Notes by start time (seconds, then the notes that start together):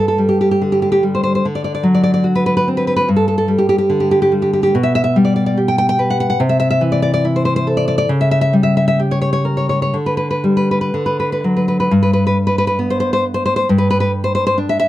Already playing: G2
0.08 A4
0.18 G3
0.29 G4
0.41 G4
0.51 G4
0.61 D3
0.72 G4
0.82 G4
0.92 G4
1.03 G3
1.15 C5
1.23 C5
1.35 C5
1.45 D3
1.55 D5
1.64 D5
1.75 D5
1.83 F#3
1.94 D5
2.03 D5
2.14 D5
2.24 F#4
2.35 B4
2.46 B4
2.57 B4
2.68 C4
2.77 B4
2.87 B4
2.96 B4
3.08 G2
3.16 A4
3.28 A4
3.38 A4
3.48 G3
3.58 G4
3.69 G4
3.78 G4
3.90 D3
4.00 G4
4.11 G4
4.22 G4
4.32 G3
4.42 G4
4.53 G4
4.63 G4
4.75 B2
4.83 E5
4.95 E5
5.04 E5
5.16 G3
5.25 D5
5.36 D5
5.46 D5
5.57 G4
5.68 G5
5.78 G5
5.89 G5
5.99 B4
6.10 F#5
6.20 F#5
6.30 F#5
6.40 C3
6.49 E5
6.60 E5
6.70 E5
6.81 E3
6.92 D5
7.02 D5
7.14 D5
7.25 E4
7.36 C5
7.45 C5
7.56 C5
7.67 A4
7.77 D5
7.88 D5
7.98 D5
8.09 C#3
8.21 E5
8.31 E5
8.41 E5
8.53 G3
8.63 E5
8.77 E5
8.88 E5
9.00 G4
9.11 C#5
9.22 C#5
9.33 C#5
9.45 A#4
9.57 C#5
9.69 C#5
9.82 C#5
9.94 D3
10.06 B4
10.17 B4
10.31 B4
10.44 G3
10.57 B4
10.71 B4
10.81 B4
10.94 D3
11.06 B4
11.20 B4
11.32 B4
11.44 F#3
11.56 B4
11.68 B4
11.80 B4
11.91 G2
12.03 B4
12.13 B4
12.27 B4
12.47 B4
12.58 B4
12.67 B4
12.79 B3
12.90 C5
13.00 C5
13.13 C5
13.34 C5
13.46 C5
13.56 C5
13.69 G2
13.78 B4
13.90 B4
14.00 B4
14.24 C5
14.35 C5
14.47 C5
14.58 D4
14.69 E5
14.80 E5